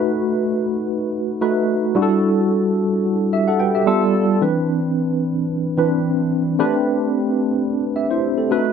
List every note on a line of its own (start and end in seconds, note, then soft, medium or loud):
0.00 0.67 A3 medium
0.00 0.67 D#4 medium
0.00 0.67 F#4 medium
0.00 0.67 B4 medium
1.41 1.96 A3 medium
1.41 1.96 D#4 medium
1.41 1.95 F#4 medium
1.41 1.96 B4 medium
1.95 2.84 G3 medium
1.95 2.85 D4 medium
1.95 2.84 E4 medium
1.95 2.85 F#4 medium
1.95 2.03 G4 medium
2.02 2.88 A4 medium
3.33 3.47 G4 medium
3.33 3.47 E5 medium
3.48 3.60 A4 medium
3.48 3.59 F#5 medium
3.60 3.74 B4 medium
3.60 3.73 G5 medium
3.75 4.01 G4 medium
3.75 4.00 E5 medium
3.86 4.32 G3 medium
3.86 4.32 B3 medium
3.86 4.32 F4 medium
3.86 4.32 A4 medium
4.41 5.30 E3 medium
4.41 5.30 C4 medium
4.41 5.31 D4 medium
4.41 5.31 B4 medium
5.77 6.45 E3 medium
5.77 6.45 C4 medium
5.77 6.45 D4 medium
5.77 6.45 B4 medium
6.59 7.48 A3 medium
6.59 7.48 C4 medium
6.59 7.49 D4 medium
6.59 7.49 G4 medium
6.59 7.49 B4 medium
7.96 8.10 G4 soft
7.96 8.10 E5 medium
8.11 8.37 E4 medium
8.11 8.37 C5 medium
8.38 8.64 C4 soft
8.38 8.64 A4 medium
8.51 8.73 A3 medium
8.51 8.58 D4 medium
8.51 8.73 F#4 medium
8.51 8.73 B4 medium
8.57 8.73 D#4 medium